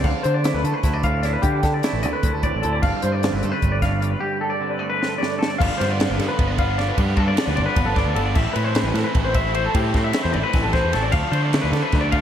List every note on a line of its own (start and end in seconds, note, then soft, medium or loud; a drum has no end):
0.04 0.13 D2 medium
0.04 1.42 D3 medium
0.04 0.24 F5 medium
0.04 kick loud
0.04 crash medium
0.23 0.51 D3 medium
0.23 0.34 C5 medium
0.23 closed hi-hat medium
0.34 0.54 D5 medium
0.43 1.83 A3 medium
0.43 0.83 E4 medium
0.43 snare loud
0.43 closed hi-hat medium
0.54 0.63 D2 medium
0.54 0.64 B4 medium
0.64 0.73 D3 loud
0.64 1.06 C4 medium
0.64 0.74 A4 medium
0.64 closed hi-hat medium
0.74 0.93 B4 medium
0.83 1.36 D2 loud
0.83 1.23 E4 medium
0.83 kick loud
0.83 snare soft
0.83 closed hi-hat medium
0.93 1.03 D5 medium
1.03 1.44 A2 medium
1.03 1.46 C4 medium
1.03 1.23 F5 medium
1.03 kick medium
1.03 closed hi-hat medium
1.23 1.83 E4 medium
1.23 1.33 D5 medium
1.23 snare soft
1.23 closed hi-hat medium
1.33 1.43 B4 medium
1.42 3.21 D3 medium
1.42 1.61 D3 medium
1.42 1.62 G4 loud
1.42 kick loud
1.42 closed hi-hat medium
1.63 1.81 D3 medium
1.63 1.73 A4 medium
1.63 kick medium
1.63 snare soft
1.63 closed hi-hat medium
1.74 1.93 D5 medium
1.83 2.86 A3 medium
1.83 2.23 E4 medium
1.83 snare loud
1.83 closed hi-hat medium
1.93 2.05 A1 medium
1.93 2.03 B4 medium
2.03 2.13 D2 medium
2.03 2.44 C4 medium
2.03 2.13 D5 medium
2.03 closed hi-hat medium
2.13 2.33 B4 medium
2.23 2.32 D2 medium
2.23 2.63 E4 medium
2.23 kick loud
2.23 closed hi-hat medium
2.33 2.51 D2 medium
2.33 2.42 A4 medium
2.43 2.82 A2 medium
2.43 3.24 C4 medium
2.43 2.63 D5 medium
2.43 kick medium
2.43 closed hi-hat medium
2.55 2.62 A1 medium
2.62 2.81 D2 medium
2.62 2.83 E4 medium
2.62 2.72 A4 medium
2.62 closed hi-hat medium
2.73 2.82 D5 medium
2.82 2.92 G1 medium
2.82 3.83 G2 medium
2.82 3.02 F5 medium
2.82 kick loud
2.82 crash medium
3.02 3.29 G2 medium
3.02 3.12 C5 medium
3.02 closed hi-hat medium
3.12 3.32 D5 medium
3.23 4.59 D3 medium
3.23 3.62 C4 medium
3.23 snare loud
3.23 closed hi-hat medium
3.32 3.41 G1 medium
3.32 3.42 B4 medium
3.42 3.51 G2 medium
3.42 3.83 A3 medium
3.42 3.52 A4 medium
3.42 closed hi-hat medium
3.52 3.71 B4 medium
3.62 4.14 G1 medium
3.62 4.01 C4 medium
3.62 kick medium
3.62 closed hi-hat medium
3.72 3.81 D5 medium
3.82 4.19 G2 medium
3.82 4.23 A3 medium
3.82 4.01 F5 medium
3.82 kick medium
3.82 snare soft
3.82 closed hi-hat medium
4.01 4.19 C4 medium
4.01 4.10 D5 medium
4.01 closed hi-hat medium
4.10 4.20 B4 medium
4.20 5.19 G2 medium
4.20 4.40 G4 medium
4.41 4.50 A4 medium
4.50 4.70 D5 medium
4.60 6.97 D3 medium
4.60 5.00 C4 medium
4.70 4.79 B4 medium
4.79 5.19 A3 medium
4.79 4.89 D5 medium
4.90 5.09 B4 medium
5.01 5.39 C4 medium
5.01 snare medium
5.09 5.18 A4 medium
5.18 5.57 G2 medium
5.18 5.57 A3 medium
5.18 5.39 D5 medium
5.23 snare medium
5.39 5.57 C4 medium
5.39 5.49 A4 medium
5.39 snare loud
5.48 5.58 D5 medium
5.58 5.69 G1 loud
5.58 5.99 G2 medium
5.58 5.99 D3 loud
5.58 5.82 F3 loud
5.58 5.81 B3 loud
5.58 5.80 F4 loud
5.58 5.78 F5 medium
5.58 kick loud
5.58 crash loud
5.78 6.06 G2 medium
5.78 6.01 F4 medium
5.78 5.89 C5 medium
5.78 ride medium
5.82 6.00 F3 medium
5.82 6.01 B3 medium
5.82 snare soft
5.89 6.09 D5 medium
5.99 6.38 G2 loud
5.99 6.39 D3 loud
5.99 6.21 F3 loud
5.99 6.19 B3 loud
5.99 6.18 F4 loud
5.99 snare loud
5.99 ride loud
6.09 6.18 G1 medium
6.09 6.18 B4 medium
6.18 6.28 G2 loud
6.18 6.60 F3 medium
6.18 6.59 B3 medium
6.18 6.58 F4 medium
6.18 6.28 A4 medium
6.18 snare soft
6.18 ride medium
6.29 6.48 B4 medium
6.39 6.90 G1 loud
6.39 kick loud
6.39 ride loud
6.48 6.58 D5 medium
6.58 6.78 F3 medium
6.58 6.78 B3 medium
6.58 6.79 F4 medium
6.58 6.78 F5 medium
6.58 kick medium
6.58 ride medium
6.77 6.95 D3 medium
6.77 6.96 F3 medium
6.77 6.96 B3 medium
6.77 6.97 F4 medium
6.77 6.88 D5 medium
6.77 snare soft
6.77 ride medium
6.88 6.98 B4 medium
6.96 7.33 G2 loud
6.96 7.15 G2 medium
6.96 7.34 D3 loud
6.96 7.17 F3 loud
6.96 7.16 B3 medium
6.96 7.14 F4 loud
6.96 7.17 G4 loud
6.96 kick loud
6.96 ride medium
7.15 7.35 G2 medium
7.15 7.34 F3 medium
7.15 7.36 B3 medium
7.15 7.36 F4 medium
7.15 7.27 A4 medium
7.15 kick medium
7.15 ride medium
7.28 7.46 D5 medium
7.34 7.75 G2 loud
7.34 7.76 D3 loud
7.34 7.55 F3 loud
7.34 7.54 B3 medium
7.34 7.53 F4 loud
7.34 ride medium
7.38 snare loud
7.46 7.59 D2 medium
7.46 7.56 B4 medium
7.54 7.66 G1 medium
7.54 7.95 F3 medium
7.54 7.94 B3 medium
7.54 7.93 F4 medium
7.54 7.65 D5 medium
7.54 ride medium
7.66 7.86 B4 medium
7.76 7.85 G1 loud
7.76 kick loud
7.76 ride loud
7.86 8.04 G1 medium
7.86 7.96 A4 medium
7.94 8.12 F3 medium
7.94 8.13 B3 medium
7.94 8.13 F4 medium
7.94 8.16 D5 medium
7.94 kick medium
7.94 snare soft
7.94 ride medium
8.05 8.14 D2 medium
8.12 8.33 G1 loud
8.12 8.33 D3 medium
8.12 8.33 F3 medium
8.12 8.34 B3 medium
8.12 8.34 F4 medium
8.12 8.26 A4 medium
8.16 ride medium
8.26 8.35 D5 medium
8.34 8.45 A1 medium
8.34 8.74 A2 loud
8.34 8.74 E3 loud
8.34 8.55 A3 loud
8.34 8.54 C4 loud
8.34 8.53 E4 loud
8.34 8.55 E5 medium
8.34 kick loud
8.34 crash loud
8.53 8.82 A2 medium
8.53 8.75 A3 medium
8.53 8.76 C4 medium
8.53 8.76 E4 medium
8.53 8.64 B4 medium
8.53 ride medium
8.64 8.85 C5 medium
8.74 9.15 A2 loud
8.74 9.53 E3 loud
8.74 8.96 A3 loud
8.74 8.95 C4 loud
8.74 8.94 E4 loud
8.74 snare loud
8.74 ride loud
8.84 8.93 A1 medium
8.84 8.95 B4 medium
8.94 9.03 A2 loud
8.94 9.35 A3 medium
8.94 9.34 C4 medium
8.94 9.33 E4 medium
8.94 9.04 A4 medium
8.94 snare soft
8.94 ride medium
9.04 9.24 B4 medium
9.15 9.67 A1 loud
9.15 kick loud
9.15 ride loud
9.25 9.35 C5 medium
9.34 9.54 A3 medium
9.34 9.55 C4 medium
9.34 9.55 E4 medium
9.34 9.55 E5 medium
9.34 kick medium
9.34 ride medium
9.54 9.73 E3 medium
9.54 9.73 A3 medium
9.54 9.74 C4 medium
9.54 9.75 E4 loud
9.54 9.65 C5 medium
9.54 ride medium
9.66 9.75 A4 medium
9.73 10.13 A2 loud
9.73 9.92 A2 loud
9.73 10.14 E3 loud
9.73 9.95 A3 loud
9.73 9.94 C4 loud
9.73 9.92 E4 loud
9.73 9.95 G4 loud
9.73 kick loud
9.73 ride loud
9.93 10.12 A2 medium
9.93 10.14 A3 medium
9.93 10.15 C4 medium
9.93 10.15 E4 medium
9.93 10.05 A4 medium
9.93 kick medium
9.93 snare soft
9.93 ride medium
10.04 10.23 E5 medium
10.13 10.54 A2 loud
10.13 10.92 E3 loud
10.13 10.36 A3 loud
10.13 10.34 C4 loud
10.13 10.33 E4 loud
10.13 snare loud
10.13 ride loud
10.23 10.36 E2 medium
10.23 10.33 C5 medium
10.33 10.43 A1 loud
10.33 10.74 A3 medium
10.33 10.74 C4 medium
10.33 10.72 E4 medium
10.33 10.43 D5 medium
10.33 ride medium
10.43 10.63 B4 medium
10.53 10.63 A1 loud
10.53 kick loud
10.53 snare soft
10.53 ride medium
10.63 10.81 A1 medium
10.63 10.73 A4 medium
10.73 10.93 A3 medium
10.73 10.94 C4 medium
10.73 10.94 E4 medium
10.73 10.93 C5 medium
10.73 kick medium
10.73 snare soft
10.73 ride medium
10.84 10.93 E2 medium
10.93 11.12 A1 loud
10.93 11.12 E3 medium
10.93 11.13 A3 medium
10.93 11.14 C4 medium
10.93 11.15 E4 medium
10.93 11.03 A4 medium
10.93 snare soft
10.93 ride medium
11.02 11.11 D5 medium
11.12 11.22 D2 medium
11.12 11.52 D3 medium
11.12 11.35 F3 loud
11.12 11.35 A3 loud
11.12 11.33 D4 loud
11.12 11.31 F5 loud
11.12 kick loud
11.12 crash loud
11.32 11.58 D3 medium
11.32 11.53 F3 medium
11.32 11.54 A3 medium
11.32 11.55 D4 medium
11.32 11.42 C5 medium
11.32 ride medium
11.42 11.62 D5 medium
11.53 11.92 D3 medium
11.53 11.74 F3 medium
11.53 11.74 A3 medium
11.53 11.72 D4 loud
11.53 snare loud
11.53 ride loud
11.62 11.72 D2 medium
11.62 11.71 B4 medium
11.71 11.81 D3 loud
11.71 12.14 F3 medium
11.71 12.13 A3 medium
11.71 12.12 D4 medium
11.71 11.82 A4 medium
11.71 snare soft
11.71 ride medium
11.82 12.02 B4 medium
11.92 12.21 D2 loud
11.92 kick loud
11.92 snare soft
11.92 ride medium
12.01 12.11 D5 medium
12.12 12.21 F3 medium
12.12 12.21 A3 medium
12.12 12.21 D4 medium
12.12 12.21 F5 medium
12.12 kick medium
12.12 ride medium